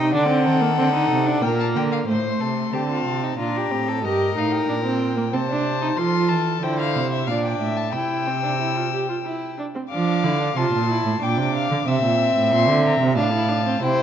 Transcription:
0.00 0.15 C3 medium
0.00 0.12 D#4 medium
0.00 0.13 D#5 medium
0.00 0.13 G5 medium
0.13 0.48 D3 medium
0.13 0.28 D4 loud
0.13 0.46 D5 medium
0.13 1.44 F#5 loud
0.29 0.63 C4 medium
0.46 0.80 D#3 medium
0.46 1.42 A4 medium
0.61 0.77 A#3 medium
0.78 1.11 D3 medium
0.78 0.93 C4 medium
0.94 1.28 D#4 medium
1.11 1.43 C3 medium
1.26 1.44 D4 medium
1.42 1.77 A#2 medium
1.42 2.08 A#3 medium
1.42 2.07 A#4 medium
1.42 1.59 G5 medium
1.60 1.67 A5 medium
1.76 2.08 D3 medium
1.76 1.83 G5 medium
1.92 1.98 F5 medium
2.08 2.39 A2 medium
2.08 2.75 A3 medium
2.08 2.42 C5 medium
2.08 2.75 C6 medium
2.41 2.73 C3 medium
2.41 2.73 A4 medium
2.73 3.05 D3 medium
2.73 3.38 C4 medium
2.73 2.80 G4 medium
2.73 3.39 A5 medium
2.90 3.25 F4 medium
3.06 3.38 C3 medium
3.23 3.38 D#4 medium
3.38 3.71 A#2 medium
3.38 3.73 D4 medium
3.38 3.59 F4 medium
3.38 4.03 A#5 medium
3.57 3.90 G4 medium
3.71 4.05 A2 medium
3.71 4.03 C4 medium
3.89 4.06 A4 medium
4.04 4.35 G2 medium
4.04 4.35 G4 medium
4.04 5.33 A#4 medium
4.04 4.39 D#5 medium
4.35 4.68 A2 medium
4.35 4.68 D#4 medium
4.35 4.53 F5 medium
4.52 5.35 G5 medium
4.68 5.35 A#2 medium
4.68 4.75 D4 medium
4.84 5.16 C4 medium
5.17 5.23 A#3 medium
5.33 5.97 C3 medium
5.33 5.40 C4 medium
5.33 6.00 C5 medium
5.33 5.99 A5 medium
5.49 5.81 D4 medium
5.82 5.88 D#4 medium
5.97 6.32 F3 medium
5.97 6.62 F4 medium
5.97 6.65 A4 medium
5.97 6.30 C6 medium
6.29 6.62 E3 medium
6.29 6.65 A5 medium
6.62 6.97 D3 medium
6.62 7.27 E4 medium
6.62 7.29 C5 medium
6.62 6.79 G5 medium
6.79 7.11 F5 medium
6.96 7.29 C3 medium
7.12 7.29 E5 medium
7.27 7.60 A#2 medium
7.27 7.93 D4 medium
7.27 7.61 D5 medium
7.27 7.44 F5 medium
7.45 7.78 G5 medium
7.61 7.95 A2 medium
7.61 7.93 E5 medium
7.77 7.94 A5 medium
7.93 9.59 C3 medium
7.93 8.29 E4 medium
7.93 9.56 G5 medium
7.93 9.58 E6 medium
8.27 8.43 C4 medium
8.44 8.50 D4 medium
8.60 8.78 E4 medium
8.76 8.92 F4 medium
8.92 9.08 G4 medium
9.09 9.16 F4 medium
9.25 9.58 E4 medium
9.59 9.65 D4 medium
9.75 9.82 C4 medium
9.90 10.25 F3 medium
9.90 10.26 D4 medium
9.90 10.59 F5 medium
9.90 10.58 D6 medium
10.24 10.56 D3 medium
10.24 10.40 E4 medium
10.40 10.47 D4 medium
10.56 10.73 C3 medium
10.56 10.89 F4 medium
10.56 11.24 A5 medium
10.56 11.21 C6 medium
10.73 11.05 A#2 medium
10.90 11.21 E4 medium
11.05 11.12 A2 medium
11.21 11.39 A#2 medium
11.21 11.86 D4 medium
11.21 11.55 G5 medium
11.21 11.89 D6 medium
11.38 11.70 C3 medium
11.55 11.87 F5 medium
11.71 11.77 D3 medium
11.87 12.03 C3 medium
11.87 13.15 C4 medium
11.87 13.16 E5 medium
11.87 12.53 E6 medium
12.03 12.35 A#2 medium
12.36 12.53 A2 medium
12.52 12.70 A#2 medium
12.52 12.85 C6 medium
12.68 13.00 D3 medium
12.86 13.17 A#5 medium
13.00 13.18 C3 medium
13.17 13.81 A2 medium
13.17 13.32 D4 medium
13.17 13.82 F5 medium
13.17 13.84 A5 medium
13.33 13.50 E4 medium
13.49 13.65 D4 medium
13.66 13.81 C4 medium
13.82 14.03 C3 medium
13.82 14.03 E4 medium
13.82 14.03 C5 loud
13.82 14.03 G5 medium

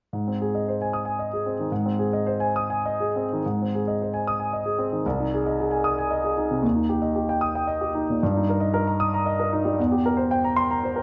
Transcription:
0.13 1.66 G#2 soft
0.27 0.49 C4 soft
0.41 0.63 G#4 soft
0.55 0.76 D#5 soft
0.68 0.89 C5 soft
0.82 1.02 G#5 soft
0.93 1.14 D#6 soft
1.05 1.26 G#5 soft
1.19 1.40 D#5 soft
1.33 1.53 G#4 soft
1.46 1.66 C4 soft
1.59 1.79 D#3 soft
1.72 3.39 G#2 soft
1.85 2.06 C4 soft
1.99 2.20 G#4 soft
2.13 2.34 D#5 soft
2.27 2.48 C5 soft
2.40 2.62 G#5 soft
2.56 2.78 D#6 medium
2.70 2.92 G#5 soft
2.86 3.08 D#5 soft
3.00 3.24 G#4 soft
3.16 3.38 C4 soft
3.33 3.45 D#3 soft
3.46 5.02 G#2 soft
3.62 3.81 C4 soft
3.74 3.94 G#4 soft
3.88 4.07 D#5 soft
4.02 4.21 C5 soft
4.14 4.34 G#5 soft
4.27 4.47 D#6 medium
4.40 4.60 G#5 soft
4.53 4.73 D#5 soft
4.65 4.86 G#4 soft
4.78 4.99 C4 soft
4.92 5.05 D#3 soft
5.06 6.60 C2 soft
5.20 5.41 D#4 soft
5.34 5.54 G#4 soft
5.46 5.67 D#5 soft
5.59 5.80 G#4 soft
5.71 5.93 G#5 soft
5.84 6.06 D#6 medium
5.98 6.19 G#5 soft
6.11 6.32 D#5 soft
6.24 6.45 G#4 soft
6.37 6.58 D#4 soft
6.51 6.64 C3 soft
6.62 8.17 D#2 soft
6.76 6.97 D#4 soft
6.89 7.10 G4 soft
7.02 7.23 D#5 soft
7.15 7.37 G4 soft
7.29 7.50 G5 soft
7.41 7.63 D#6 medium
7.55 7.76 G5 soft
7.67 7.89 D#5 soft
7.81 8.02 G4 soft
7.95 8.16 D#4 soft
8.10 8.22 A#2 soft
8.23 9.75 G2 soft
8.37 8.57 D#4 soft
8.49 8.69 A#4 soft
8.60 8.82 D#5 soft
8.74 8.95 A#4 medium
8.87 9.08 A#5 soft
9.00 9.21 D#6 medium
9.14 9.35 A#5 soft
9.26 9.47 D#5 soft
9.39 9.60 A#4 soft
9.53 9.73 D#4 soft
9.65 9.78 G3 soft
9.79 11.03 E2 medium
9.92 10.12 G4 soft
10.06 10.25 A#4 medium
10.17 10.37 C5 soft
10.31 10.51 G5 medium
10.44 10.64 A#5 soft
10.56 10.76 C6 medium
10.71 10.89 A#5 soft
10.83 11.02 C5 medium
10.96 11.03 A#4 soft

